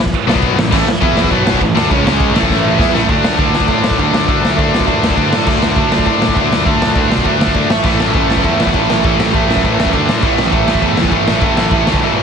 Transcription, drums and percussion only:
0.06 kick
0.13 kick, ride
0.29 snare
0.35 kick
0.42 kick, ride
0.59 snare
0.72 kick, crash
0.88 snare
1.02 kick, ride
1.17 snare
1.24 kick
1.31 kick, ride
1.47 snare
1.53 kick
1.61 kick, ride
1.77 snare
1.91 kick, ride
2.07 snare
2.20 kick, ride
2.36 snare
2.42 kick
2.50 kick, snare
2.79 kick, snare
2.95 snare
3.09 kick, ride
3.24 snare
3.38 kick, ride
3.55 snare
3.61 kick
3.68 kick, ride
3.84 snare
3.91 kick
3.98 kick, ride
4.14 snare
4.28 kick, ride
4.45 snare
4.58 kick, ride
4.74 snare
4.80 kick
4.87 kick, ride
5.04 snare
5.10 kick
5.17 kick, ride
5.33 snare
5.46 kick, crash
5.62 snare
5.76 kick, ride
5.92 snare
5.99 kick
6.06 kick, ride
6.22 snare
6.29 kick
6.36 kick, ride
6.53 snare
6.66 kick, ride
6.82 snare
6.95 kick, ride
7.12 snare
7.18 kick
7.25 kick, ride
7.41 snare
7.47 kick
7.54 kick, ride
7.70 snare
7.83 kick, crash
8.00 snare
8.14 kick, ride
8.30 snare
8.37 kick
8.44 kick, ride
8.60 snare
8.66 kick
8.74 kick, ride
8.90 snare
9.04 kick, ride
9.20 snare
9.34 kick, ride
9.51 snare
9.56 kick
9.64 kick, ride
9.80 snare
9.86 kick
9.93 kick, ride
10.09 snare
10.22 kick, crash
10.38 snare
10.52 kick, ride
10.68 snare
10.75 kick
10.82 kick, ride
10.97 snare
11.04 kick
11.11 kick, ride
11.28 snare
11.41 kick, ride
11.57 snare
11.71 kick, ride
11.87 snare
11.93 kick

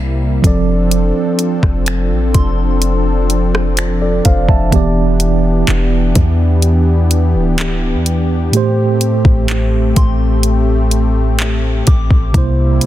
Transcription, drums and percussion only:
0.44 kick, closed hi-hat
0.91 closed hi-hat
1.39 closed hi-hat
1.63 kick, cross-stick
1.86 finger snap, closed hi-hat
2.34 kick, closed hi-hat
2.82 closed hi-hat
3.30 closed hi-hat
3.55 cross-stick
3.77 finger snap, closed hi-hat
4.25 kick, closed hi-hat
4.49 kick
4.72 kick, closed hi-hat
5.20 closed hi-hat
5.67 clap, closed hi-hat
6.15 kick, closed hi-hat
6.62 closed hi-hat
7.11 closed hi-hat
7.58 clap, closed hi-hat
8.06 closed hi-hat
8.53 closed hi-hat
9.01 closed hi-hat
9.25 kick
9.48 clap, closed hi-hat
9.96 kick, closed hi-hat
10.43 closed hi-hat
10.91 closed hi-hat
11.39 clap, closed hi-hat
11.87 kick, closed hi-hat
12.11 kick
12.34 kick, closed hi-hat
12.81 closed hi-hat

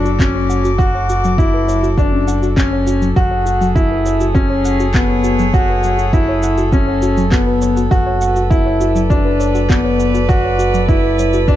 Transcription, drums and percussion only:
0.06 shaker
0.19 kick, clap, shaker
0.50 shaker
0.65 shaker
0.79 kick, shaker
1.09 shaker
1.24 shaker
1.38 kick, shaker
1.69 shaker
1.84 shaker
1.98 kick, shaker
2.28 shaker
2.43 shaker
2.57 kick, clap, shaker
2.87 shaker
3.02 shaker
3.16 kick, shaker
3.46 shaker
3.62 shaker
3.76 kick, shaker
4.06 shaker
4.21 shaker
4.35 kick, shaker
4.65 shaker
4.80 shaker
4.94 kick, clap, shaker
5.24 shaker
5.39 shaker
5.54 kick, shaker
5.83 shaker
5.99 shaker
6.13 kick, shaker
6.43 shaker
6.58 shaker
6.72 kick, shaker
7.02 shaker
7.17 shaker
7.32 kick, clap, shaker
7.62 shaker
7.77 shaker
7.91 kick, shaker
8.21 shaker
8.36 shaker
8.51 kick, shaker
8.81 shaker
8.96 shaker
9.10 kick, shaker
9.40 shaker
9.55 shaker
9.70 kick, clap, shaker
10.00 shaker
10.15 shaker
10.29 kick, shaker
10.59 shaker
10.74 shaker
10.89 kick, shaker
11.19 shaker
11.33 shaker
11.48 kick, shaker

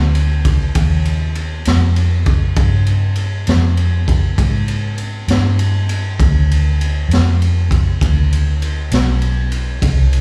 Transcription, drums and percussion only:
0.15 ride
0.45 kick, ride
0.75 kick, ride
1.05 ride
1.35 ride
1.65 snare, ride
1.96 ride
2.26 kick, ride
2.56 kick, ride
2.87 ride
3.16 ride
3.47 snare, ride
3.77 ride
4.08 kick, ride
4.38 kick, ride
4.68 ride
4.98 ride
5.28 snare, ride
5.59 ride
5.89 ride
6.20 kick, ride
6.51 ride
6.81 ride
7.11 snare, ride
7.42 ride
7.71 kick, ride
8.01 kick, ride
8.33 ride
8.62 ride
8.91 snare, ride
9.22 ride
9.52 ride
9.82 kick, ride
10.13 ride

